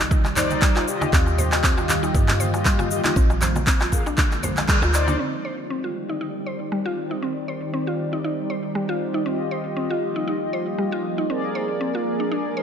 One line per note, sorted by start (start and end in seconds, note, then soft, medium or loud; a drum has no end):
0.00 0.84 C2 loud
0.00 1.08 C3 medium
0.00 1.08 D#3 medium
0.00 1.09 G3 medium
0.00 1.08 G4 medium
0.00 1.08 D5 medium
0.11 0.23 D#4 medium
0.11 kick loud
0.11 high conga medium
0.11 cabasa medium
0.25 clap soft
0.25 darbuka tek medium
0.25 cabasa soft
0.36 0.85 D#4 loud
0.36 0.49 C5 medium
0.36 0.85 C5 medium
0.36 0.85 D5 loud
0.36 clap medium
0.36 low conga medium
0.36 cabasa medium
0.50 high conga medium
0.50 darbuka tek medium
0.50 cabasa soft
0.62 0.69 G3 loud
0.62 kick loud
0.62 clap loud
0.62 cabasa medium
0.76 0.87 F4 loud
0.76 clap medium
0.76 darbuka ka medium
0.76 darbuka tek medium
0.76 cabasa soft
0.88 2.51 F4 medium
0.88 2.51 G4 medium
0.88 2.51 D#5 medium
0.88 cabasa medium
1.01 1.12 D#4 medium
1.01 high conga loud
1.01 darbuka tek loud
1.01 cabasa soft
1.13 2.11 D#2 loud
1.13 3.14 D#3 medium
1.13 5.16 F3 medium
1.13 3.14 G3 medium
1.13 5.16 A#3 medium
1.13 1.25 C4 medium
1.13 5.16 F4 medium
1.13 kick loud
1.13 clap medium
1.13 cabasa medium
1.26 darbuka tek medium
1.26 cabasa soft
1.38 1.51 C5 medium
1.38 low conga medium
1.38 cabasa medium
1.52 clap medium
1.52 darbuka tek medium
1.52 cabasa soft
1.64 1.71 C4 medium
1.64 kick loud
1.64 clap loud
1.64 cabasa soft
1.78 1.88 F4 medium
1.78 darbuka ka medium
1.78 darbuka tek medium
1.78 cabasa soft
1.89 clap medium
1.89 low conga medium
1.89 cabasa medium
2.03 2.13 D#4 medium
2.03 darbuka tek medium
2.03 cabasa soft
2.14 3.00 G2 medium
2.14 2.27 D#4 medium
2.14 kick loud
2.14 high conga medium
2.14 cabasa medium
2.28 clap medium
2.28 darbuka tek medium
2.28 low conga medium
2.28 cabasa soft
2.40 2.52 C5 medium
2.40 high conga medium
2.40 cabasa medium
2.54 2.88 F4 medium
2.54 2.88 G4 medium
2.54 2.88 D#5 medium
2.54 darbuka tek medium
2.54 cabasa soft
2.65 2.73 G3 loud
2.65 kick loud
2.65 clap loud
2.65 cabasa soft
2.79 2.90 F4 loud
2.79 darbuka ka medium
2.79 high conga medium
2.79 darbuka tek medium
2.79 cabasa soft
2.91 3.01 F4 medium
2.91 3.01 G4 medium
2.91 3.01 D#5 medium
2.91 cabasa medium
3.04 3.16 D#4 medium
3.04 3.15 F4 medium
3.04 3.15 G4 medium
3.04 3.15 D#5 loud
3.04 clap medium
3.04 darbuka tek medium
3.04 high conga medium
3.04 cabasa soft
3.16 4.70 A#1 loud
3.16 5.17 D3 medium
3.16 5.18 G#3 medium
3.16 3.29 C4 medium
3.16 kick loud
3.16 cabasa medium
3.30 darbuka tek medium
3.30 cabasa soft
3.41 3.54 C5 medium
3.41 clap medium
3.41 low conga medium
3.41 cabasa medium
3.56 high conga medium
3.56 darbuka tek medium
3.56 cabasa soft
3.67 3.74 C4 medium
3.67 kick loud
3.67 clap loud
3.67 cabasa medium
3.81 3.91 F4 medium
3.81 clap medium
3.81 darbuka ka medium
3.81 darbuka tek medium
3.81 cabasa soft
3.92 4.02 G#4 medium
3.92 4.02 A#4 medium
3.92 4.02 F5 medium
3.92 kick medium
3.92 low conga medium
3.92 cabasa medium
4.06 4.17 D4 medium
4.06 darbuka tek medium
4.06 cabasa soft
4.18 4.30 D4 medium
4.18 kick loud
4.18 clap medium
4.18 high conga medium
4.18 cabasa medium
4.32 clap soft
4.32 darbuka tek medium
4.32 cabasa soft
4.43 4.56 C5 medium
4.43 low conga loud
4.43 cabasa medium
4.57 clap medium
4.57 darbuka ka medium
4.57 high conga medium
4.57 darbuka tek medium
4.57 cabasa soft
4.68 4.80 D2 loud
4.68 4.76 G3 loud
4.68 4.78 G#4 loud
4.68 4.78 A#4 medium
4.68 4.78 D5 loud
4.68 kick loud
4.68 clap loud
4.68 cabasa soft
4.82 5.16 D2 medium
4.82 4.93 F4 loud
4.82 darbuka ka medium
4.82 darbuka tek medium
4.82 cabasa soft
4.94 5.18 D#4 loud
4.94 5.18 C5 medium
4.94 5.18 D5 loud
4.94 clap medium
4.94 cabasa medium
5.08 5.19 D4 medium
5.08 darbuka tek medium
5.08 high conga loud
5.08 cabasa soft
5.19 9.22 D#3 medium
5.19 11.26 G3 medium
5.19 5.32 C4 medium
5.19 9.22 C4 medium
5.19 9.24 D#4 medium
5.19 11.26 G4 medium
5.19 9.24 D5 medium
5.19 9.22 D5 medium
5.19 cabasa soft
5.45 5.57 C5 medium
5.70 5.78 C4 medium
5.84 5.95 F4 medium
6.09 6.20 D#4 medium
6.21 6.34 D#4 medium
6.21 cabasa soft
6.46 6.59 C5 medium
6.72 6.79 G3 loud
6.86 6.97 F4 loud
7.11 7.22 D#4 medium
7.23 7.35 C4 medium
7.48 7.61 C5 medium
7.74 7.81 C4 medium
7.87 7.98 F4 medium
7.99 cabasa medium
8.13 8.23 D#4 medium
8.24 8.37 D#4 medium
8.50 8.62 C5 medium
8.75 8.83 G3 loud
8.89 9.00 F4 loud
9.01 cabasa medium
9.14 9.26 D#4 medium
9.26 11.28 F3 medium
9.26 12.63 A#3 medium
9.26 9.39 C4 medium
9.26 11.28 D#4 medium
9.26 11.27 F4 medium
9.26 11.27 G4 medium
9.26 11.27 D#5 medium
9.51 9.64 C5 medium
9.77 9.84 C4 medium
9.91 10.01 F4 medium
10.03 cabasa medium
10.16 10.26 D#4 medium
10.28 10.40 D#4 medium
10.53 10.66 C5 medium
10.78 10.86 G3 medium
10.78 cabasa medium
10.92 11.04 F4 loud
11.04 cabasa medium
11.18 11.29 D#4 medium
11.29 12.63 F3 medium
11.29 12.63 G#3 medium
11.29 11.42 C4 medium
11.29 12.63 D4 medium
11.29 12.63 G#4 medium
11.29 12.63 A#4 medium
11.29 12.63 D5 medium
11.29 cabasa medium
11.55 11.68 C5 medium
11.80 11.88 C4 medium
11.80 cabasa medium
11.95 12.05 F4 medium
12.06 cabasa medium
12.20 12.30 D4 medium
12.32 12.44 D4 medium
12.57 12.63 C5 medium